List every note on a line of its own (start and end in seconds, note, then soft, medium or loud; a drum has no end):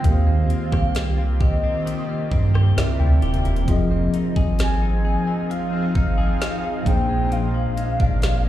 0.00 0.13 G#2 medium
0.00 2.72 D#3 medium
0.00 2.74 D#3 medium
0.00 1.85 D#3 medium
0.00 0.26 A#3 medium
0.00 2.72 A#3 medium
0.00 2.74 A#3 medium
0.00 0.30 C4 medium
0.00 2.74 C4 medium
0.00 2.74 F4 medium
0.00 2.74 G4 medium
0.04 0.45 D#2 loud
0.04 2.73 F4 medium
0.04 2.74 G4 medium
0.04 0.12 A#4 medium
0.04 1.43 F5 loud
0.04 kick loud
0.04 closed hi-hat medium
0.14 2.78 C5 medium
0.27 0.95 A#3 medium
0.49 1.18 C4 medium
0.49 closed hi-hat medium
0.72 1.54 C2 medium
0.72 1.40 G4 medium
0.72 kick loud
0.72 cross-stick medium
0.95 2.08 A#3 medium
0.95 snare loud
0.95 closed hi-hat medium
1.18 1.63 C4 medium
1.41 2.53 G4 medium
1.41 2.77 D#5 medium
1.41 kick loud
1.64 2.31 C4 medium
1.86 2.86 D#3 medium
1.86 closed hi-hat medium
2.09 2.86 A#3 medium
2.32 2.72 G2 loud
2.32 2.99 C4 medium
2.32 kick medium
2.54 2.86 G4 medium
2.54 cross-stick loud
2.76 2.98 C2 loud
2.76 3.67 C3 medium
2.76 3.77 C3 medium
2.76 3.66 C4 medium
2.76 3.68 E4 medium
2.76 3.69 A#4 medium
2.76 3.69 D5 medium
2.76 2.98 E5 medium
2.76 snare loud
2.76 closed hi-hat medium
3.00 3.20 D2 medium
3.00 3.44 E4 medium
3.00 3.64 G5 medium
3.22 3.43 D#1 medium
3.22 3.77 G4 medium
3.22 closed hi-hat soft
3.34 closed hi-hat soft
3.45 3.66 E1 medium
3.45 3.77 E4 medium
3.45 closed hi-hat soft
3.56 closed hi-hat soft
3.65 4.09 F1 loud
3.65 6.81 F3 medium
3.65 6.83 F3 medium
3.65 5.50 F3 medium
3.65 6.82 C4 medium
3.65 6.83 C4 medium
3.65 6.83 D#4 medium
3.65 6.83 F4 medium
3.65 6.82 F4 medium
3.65 6.83 G#4 medium
3.65 kick loud
3.65 closed hi-hat medium
3.70 6.83 G#4 medium
3.70 6.84 D#5 medium
3.91 4.58 C4 medium
4.14 4.81 D#4 medium
4.14 closed hi-hat medium
4.36 5.17 G#1 medium
4.36 5.04 G#4 medium
4.36 kick loud
4.59 5.71 C4 medium
4.59 5.52 G#5 loud
4.59 snare loud
4.59 closed hi-hat medium
4.82 5.26 D#4 medium
5.05 6.17 G#4 medium
5.27 5.94 D#4 medium
5.50 7.54 F3 medium
5.50 5.95 F5 loud
5.50 closed hi-hat medium
5.73 6.40 C4 medium
5.95 6.36 G#1 loud
5.95 6.62 D#4 medium
5.95 6.88 F5 loud
5.95 kick loud
6.18 7.35 G#4 medium
6.41 6.95 C4 medium
6.41 snare loud
6.41 closed hi-hat medium
6.63 6.95 D#4 medium
6.83 7.67 A#1 loud
6.83 8.49 A#2 medium
6.83 7.30 A#2 medium
6.83 8.49 G#3 medium
6.83 8.49 A#3 medium
6.83 8.49 D4 medium
6.83 7.34 G5 loud
6.83 kick loud
6.83 closed hi-hat medium
6.88 8.49 G#4 medium
6.88 8.49 C5 medium
7.09 7.77 G#3 medium
7.32 8.49 A#2 medium
7.32 8.49 F5 loud
7.32 closed hi-hat medium
7.54 8.22 F3 medium
7.77 8.45 G#3 medium
7.77 closed hi-hat medium
8.00 8.49 G#1 medium
8.00 8.49 D4 medium
8.00 kick loud
8.22 8.49 F3 medium
8.22 snare loud
8.22 closed hi-hat medium
8.45 8.49 G#3 medium